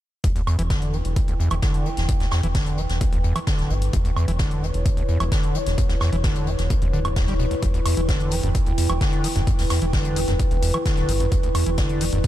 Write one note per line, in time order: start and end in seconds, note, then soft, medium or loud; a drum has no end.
0.24 0.34 E1 medium
0.24 0.28 E2 medium
0.24 12.27 E4 medium
0.24 kick loud
0.24 closed hi-hat medium
0.33 0.42 D2 medium
0.33 12.27 B4 medium
0.33 closed hi-hat soft
0.44 0.57 E2 loud
0.44 4.15 G5 medium
0.44 closed hi-hat medium
0.44 high woodblock medium
0.59 1.02 E1 medium
0.59 0.63 E3 medium
0.59 closed hi-hat medium
0.70 0.95 D3 medium
0.70 kick loud
0.70 snare loud
0.70 closed hi-hat medium
0.82 closed hi-hat soft
0.93 0.97 E3 medium
0.93 closed hi-hat medium
1.05 1.14 E1 medium
1.05 closed hi-hat medium
1.16 1.20 E2 loud
1.16 kick loud
1.16 closed hi-hat medium
1.28 1.34 D2 medium
1.28 closed hi-hat soft
1.40 1.49 E2 loud
1.40 closed hi-hat medium
1.50 1.61 E1 loud
1.50 1.55 E3 medium
1.50 closed hi-hat soft
1.50 high woodblock medium
1.62 1.87 D3 medium
1.62 kick loud
1.62 snare loud
1.62 closed hi-hat medium
1.74 closed hi-hat soft
1.86 1.89 E3 medium
1.86 closed hi-hat medium
1.97 2.07 E1 loud
1.97 snare soft
1.97 closed hi-hat medium
2.08 2.13 E2 loud
2.08 kick loud
2.08 closed hi-hat medium
2.20 2.27 D2 medium
2.20 snare soft
2.20 closed hi-hat soft
2.31 2.41 E2 loud
2.31 snare soft
2.31 closed hi-hat medium
2.31 high woodblock medium
2.43 2.86 E1 medium
2.43 2.47 E3 medium
2.43 closed hi-hat soft
2.55 2.79 D3 medium
2.55 kick loud
2.55 snare loud
2.55 closed hi-hat medium
2.55 open hi-hat medium
2.66 closed hi-hat soft
2.78 2.82 E3 medium
2.78 closed hi-hat medium
2.89 2.99 E1 medium
2.89 snare soft
2.89 closed hi-hat soft
3.01 3.05 E2 loud
3.01 kick loud
3.01 closed hi-hat medium
3.13 3.22 E1 loud
3.13 3.19 D2 medium
3.13 closed hi-hat soft
3.24 3.34 E1 medium
3.24 3.34 E2 loud
3.24 closed hi-hat medium
3.36 3.39 E3 medium
3.36 closed hi-hat medium
3.36 high woodblock medium
3.47 3.72 D3 medium
3.47 kick loud
3.47 snare loud
3.47 closed hi-hat medium
3.59 3.68 D1 medium
3.59 snare soft
3.59 closed hi-hat soft
3.70 3.89 G1 medium
3.70 3.74 E3 medium
3.70 closed hi-hat medium
3.82 closed hi-hat medium
3.93 4.03 E1 medium
3.93 3.97 E2 loud
3.93 kick loud
3.93 closed hi-hat medium
4.05 4.11 D2 medium
4.05 closed hi-hat soft
4.13 4.26 E2 loud
4.13 7.85 C#5 medium
4.13 closed hi-hat medium
4.13 high woodblock medium
4.28 4.71 E1 medium
4.28 4.32 E3 medium
4.28 closed hi-hat soft
4.39 4.64 D3 medium
4.39 kick loud
4.39 snare loud
4.39 closed hi-hat medium
4.51 closed hi-hat soft
4.63 4.66 E3 medium
4.63 closed hi-hat medium
4.74 4.84 E1 medium
4.74 closed hi-hat soft
4.86 4.89 E2 loud
4.86 kick loud
4.86 closed hi-hat medium
4.97 5.04 D2 medium
4.97 closed hi-hat soft
5.08 5.18 E2 loud
5.08 closed hi-hat medium
5.20 5.30 E1 loud
5.20 5.24 E3 medium
5.20 closed hi-hat soft
5.20 high woodblock medium
5.32 5.56 D3 medium
5.32 kick loud
5.32 snare loud
5.32 closed hi-hat medium
5.43 closed hi-hat soft
5.55 5.59 E3 medium
5.55 closed hi-hat medium
5.66 5.76 E1 medium
5.66 snare soft
5.66 closed hi-hat soft
5.78 5.82 E2 loud
5.78 kick loud
5.78 closed hi-hat medium
5.89 5.96 D2 medium
5.89 snare soft
5.89 closed hi-hat soft
6.00 6.11 E2 loud
6.00 snare soft
6.00 closed hi-hat medium
6.00 high woodblock medium
6.13 6.56 E1 medium
6.13 6.16 E3 medium
6.13 closed hi-hat soft
6.24 6.49 D3 medium
6.24 kick loud
6.24 snare loud
6.24 closed hi-hat medium
6.24 open hi-hat medium
6.36 closed hi-hat soft
6.47 6.51 E3 medium
6.47 closed hi-hat medium
6.58 6.68 E1 medium
6.58 snare soft
6.58 closed hi-hat soft
6.70 6.74 E2 loud
6.70 kick loud
6.70 closed hi-hat medium
6.82 6.91 E1 loud
6.82 6.88 D2 medium
6.82 closed hi-hat soft
6.93 7.48 D1 medium
6.93 7.00 D3 loud
6.93 closed hi-hat medium
7.05 7.09 E2 medium
7.05 closed hi-hat soft
7.05 high woodblock medium
7.16 7.26 E2 medium
7.16 kick loud
7.16 snare loud
7.16 closed hi-hat medium
7.27 7.34 G3 medium
7.27 snare soft
7.27 closed hi-hat soft
7.39 7.46 B2 medium
7.39 closed hi-hat medium
7.51 7.55 D2 medium
7.51 closed hi-hat soft
7.62 7.72 E1 medium
7.62 7.66 E2 loud
7.62 kick loud
7.62 closed hi-hat medium
7.74 7.80 D2 medium
7.74 closed hi-hat soft
7.82 7.95 E2 loud
7.82 11.54 G5 medium
7.82 open hi-hat loud
7.82 high woodblock medium
7.86 closed hi-hat medium
7.97 8.40 E1 medium
7.97 8.01 E3 medium
7.97 closed hi-hat soft
8.08 8.33 D3 medium
8.08 kick loud
8.08 snare loud
8.08 closed hi-hat medium
8.20 closed hi-hat soft
8.31 8.36 E3 medium
8.31 closed hi-hat medium
8.31 open hi-hat loud
8.43 8.53 E1 medium
8.43 8.50 F#2 medium
8.43 closed hi-hat soft
8.55 8.59 E2 medium
8.55 kick loud
8.55 closed hi-hat medium
8.66 8.73 D2 medium
8.66 closed hi-hat soft
8.78 8.87 E2 loud
8.78 closed hi-hat medium
8.78 open hi-hat loud
8.89 8.99 E1 loud
8.89 8.93 E3 medium
8.89 closed hi-hat soft
8.89 high woodblock medium
9.01 9.25 D3 medium
9.01 kick loud
9.01 snare loud
9.01 closed hi-hat medium
9.13 closed hi-hat soft
9.24 9.28 E3 medium
9.24 closed hi-hat medium
9.24 open hi-hat loud
9.36 9.45 E1 loud
9.36 9.42 F#2 medium
9.36 snare soft
9.36 closed hi-hat soft
9.47 9.51 E2 loud
9.47 kick loud
9.47 closed hi-hat medium
9.58 9.65 D2 medium
9.58 snare soft
9.58 open hi-hat medium
9.70 9.80 E2 loud
9.70 snare medium
9.70 closed hi-hat medium
9.70 open hi-hat medium
9.70 high woodblock medium
9.82 10.25 E1 medium
9.82 9.86 E3 medium
9.82 closed hi-hat medium
9.93 10.18 D3 medium
9.93 kick loud
9.93 snare loud
9.93 closed hi-hat medium
9.93 open hi-hat medium
10.04 closed hi-hat soft
10.16 10.20 E3 medium
10.16 closed hi-hat medium
10.16 open hi-hat loud
10.28 10.37 E1 medium
10.28 10.34 F#2 medium
10.28 snare soft
10.28 closed hi-hat soft
10.39 10.43 E2 loud
10.39 kick loud
10.39 closed hi-hat medium
10.51 10.61 E1 loud
10.51 10.57 D2 medium
10.51 closed hi-hat soft
10.62 10.72 E1 medium
10.62 10.72 E2 loud
10.62 closed hi-hat medium
10.62 open hi-hat medium
10.74 10.78 E3 medium
10.74 closed hi-hat soft
10.74 high woodblock medium
10.86 11.10 D3 medium
10.86 kick loud
10.86 snare loud
10.86 closed hi-hat medium
10.97 11.07 D1 medium
10.97 snare soft
10.97 closed hi-hat soft
11.09 11.28 G1 medium
11.09 11.13 E3 medium
11.09 closed hi-hat medium
11.09 open hi-hat loud
11.20 11.27 F#2 medium
11.20 closed hi-hat medium
11.32 11.41 E1 medium
11.32 11.36 E2 loud
11.32 kick loud
11.32 closed hi-hat medium
11.43 11.50 D2 medium
11.43 closed hi-hat soft
11.52 11.64 E2 loud
11.52 12.27 D5 medium
11.52 closed hi-hat medium
11.52 open hi-hat medium
11.52 high woodblock medium
11.66 12.09 E1 medium
11.66 11.70 E3 medium
11.66 closed hi-hat medium
11.78 12.03 D3 medium
11.78 kick loud
11.78 snare loud
11.78 closed hi-hat medium
11.89 closed hi-hat soft
12.01 12.05 E3 medium
12.01 closed hi-hat medium
12.01 open hi-hat loud
12.13 12.22 E1 medium
12.13 12.19 F#2 medium
12.13 closed hi-hat medium
12.24 12.27 E2 loud
12.24 kick loud
12.24 closed hi-hat medium